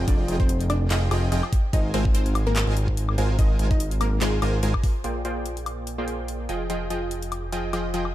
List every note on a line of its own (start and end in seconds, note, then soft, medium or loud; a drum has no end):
0.08 0.27 F1 loud
0.08 0.26 F3 medium
0.08 0.32 D4 medium
0.08 0.26 F4 medium
0.08 0.26 G#4 medium
0.08 0.32 D5 medium
0.08 0.26 D#5 medium
0.08 kick loud
0.08 closed hi-hat medium
0.28 0.89 F1 loud
0.28 0.88 F3 medium
0.28 0.88 F4 medium
0.28 0.88 G#4 medium
0.28 0.88 D#5 medium
0.28 0.88 G5 medium
0.28 closed hi-hat medium
0.40 0.63 C4 medium
0.40 0.64 C5 loud
0.40 kick loud
0.49 closed hi-hat medium
0.61 closed hi-hat medium
0.70 0.86 D4 medium
0.70 0.86 D5 medium
0.70 closed hi-hat medium
0.70 high woodblock medium
0.90 1.09 F1 loud
0.90 1.09 F3 medium
0.90 1.66 D#4 medium
0.90 1.09 F4 medium
0.90 1.09 G#4 medium
0.90 1.09 D#5 medium
0.90 1.66 D#5 loud
0.90 1.09 G5 loud
0.90 clap loud
0.90 closed hi-hat medium
1.11 1.30 F1 loud
1.11 1.30 F3 loud
1.11 1.30 F4 loud
1.11 1.30 G#4 medium
1.11 1.30 D#5 medium
1.11 1.30 G5 loud
1.11 closed hi-hat medium
1.11 high woodblock medium
1.32 1.42 F1 loud
1.32 1.44 F3 loud
1.32 1.44 F4 medium
1.32 1.44 G#4 medium
1.32 1.44 D#5 medium
1.32 1.44 G5 loud
1.32 closed hi-hat medium
1.43 high woodblock medium
1.53 kick loud
1.53 closed hi-hat medium
1.73 1.92 G#1 loud
1.73 1.92 G#3 medium
1.73 1.90 D#4 medium
1.73 1.92 F4 medium
1.73 1.92 A#4 medium
1.73 1.92 C5 medium
1.73 1.90 D#5 loud
1.73 1.92 G#5 medium
1.73 kick loud
1.73 closed hi-hat medium
1.94 2.65 G#1 loud
1.94 2.65 G#3 loud
1.94 2.10 C4 medium
1.94 2.65 F4 loud
1.94 2.65 A#4 loud
1.94 2.65 C5 medium
1.94 2.10 C5 medium
1.94 2.65 G#5 loud
1.94 closed hi-hat medium
2.05 kick loud
2.15 2.39 C4 medium
2.15 2.39 C5 loud
2.15 closed hi-hat medium
2.26 closed hi-hat medium
2.35 closed hi-hat medium
2.35 high woodblock medium
2.47 2.70 A#3 medium
2.47 2.70 A#4 loud
2.56 clap loud
2.56 closed hi-hat medium
2.67 3.16 G#1 medium
2.67 3.16 G#3 medium
2.67 3.16 F4 medium
2.67 3.16 A#4 medium
2.67 3.16 C5 medium
2.67 3.16 G#5 loud
2.77 closed hi-hat medium
2.88 kick medium
2.97 closed hi-hat medium
3.09 high woodblock medium
3.18 3.37 G#1 loud
3.18 3.37 G#3 medium
3.18 3.37 F4 medium
3.18 3.37 A#4 medium
3.18 3.37 C5 medium
3.18 3.37 G#5 loud
3.18 closed hi-hat medium
3.39 3.58 G#1 loud
3.39 3.57 G#3 medium
3.39 3.63 D#4 medium
3.39 3.57 F4 medium
3.39 3.57 A#4 medium
3.39 3.57 C5 medium
3.39 3.63 D#5 medium
3.39 3.57 G#5 loud
3.39 kick loud
3.39 closed hi-hat medium
3.59 4.20 G#1 loud
3.59 4.19 G#3 medium
3.59 4.19 F4 medium
3.59 4.19 A#4 medium
3.59 4.19 C5 medium
3.59 4.19 G#5 medium
3.59 closed hi-hat medium
3.71 3.95 D#4 medium
3.71 3.95 D#5 loud
3.71 kick loud
3.80 closed hi-hat medium
3.91 closed hi-hat medium
4.01 4.17 A#3 medium
4.01 4.17 A#4 medium
4.01 closed hi-hat medium
4.01 high woodblock medium
4.21 4.40 G#1 loud
4.21 4.40 G#3 loud
4.21 4.97 G#3 medium
4.21 4.40 F4 medium
4.21 4.97 G#4 loud
4.21 4.40 A#4 medium
4.21 4.40 C5 medium
4.21 4.40 G#5 loud
4.21 clap loud
4.21 closed hi-hat medium
4.42 4.61 G#1 loud
4.42 4.61 G#3 loud
4.42 4.61 F4 medium
4.42 4.61 A#4 loud
4.42 4.61 C5 medium
4.42 4.61 G#5 loud
4.42 closed hi-hat medium
4.42 high woodblock medium
4.63 4.73 G#1 loud
4.63 4.75 G#3 loud
4.63 4.75 F4 medium
4.63 4.75 A#4 medium
4.63 4.75 C5 medium
4.63 4.75 G#5 loud
4.63 closed hi-hat medium
4.74 kick medium
4.74 high woodblock medium
4.83 kick loud
4.83 open hi-hat medium
5.04 6.47 A#1 medium
5.04 5.23 A#3 medium
5.04 5.23 F4 medium
5.04 5.23 G#4 medium
5.04 5.23 C5 medium
5.04 5.23 D5 medium
5.04 5.23 G5 medium
5.04 closed hi-hat medium
5.25 5.96 A#3 medium
5.25 5.96 F4 medium
5.25 5.96 G#4 medium
5.25 5.96 C5 medium
5.25 5.96 D5 medium
5.25 5.96 G5 loud
5.25 closed hi-hat medium
5.46 closed hi-hat medium
5.57 closed hi-hat medium
5.66 closed hi-hat medium
5.66 high woodblock medium
5.87 closed hi-hat medium
5.98 6.47 A#3 medium
5.98 6.47 F4 medium
5.98 6.47 G#4 medium
5.98 6.47 C5 medium
5.98 6.47 D5 medium
5.98 6.47 G5 loud
6.08 closed hi-hat medium
6.28 closed hi-hat medium
6.49 8.15 F1 medium
6.49 6.68 F3 medium
6.49 6.68 F4 medium
6.49 6.67 G#4 medium
6.49 6.68 D#5 medium
6.49 6.67 G5 medium
6.49 closed hi-hat medium
6.70 6.88 F3 medium
6.70 6.88 F4 medium
6.70 6.88 G#4 medium
6.70 6.88 D#5 medium
6.70 6.88 G5 medium
6.70 closed hi-hat medium
6.90 7.50 F3 medium
6.90 7.50 F4 medium
6.90 7.50 G#4 medium
6.90 7.50 D#5 medium
6.90 7.50 G5 medium
6.90 closed hi-hat medium
7.11 closed hi-hat medium
7.22 closed hi-hat medium
7.32 closed hi-hat medium
7.32 high woodblock medium
7.52 7.71 F3 medium
7.52 7.71 F4 medium
7.52 7.71 G#4 medium
7.52 7.71 D#5 medium
7.52 7.71 G5 loud
7.52 closed hi-hat medium
7.73 7.92 F3 medium
7.73 7.92 F4 medium
7.73 7.92 G#4 medium
7.73 7.92 D#5 medium
7.73 7.92 G5 loud
7.73 closed hi-hat medium
7.73 high woodblock medium
7.94 8.06 F3 medium
7.94 8.06 F4 medium
7.94 8.06 G#4 medium
7.94 8.06 D#5 medium
7.94 8.06 G5 loud
7.94 closed hi-hat medium
8.05 high woodblock medium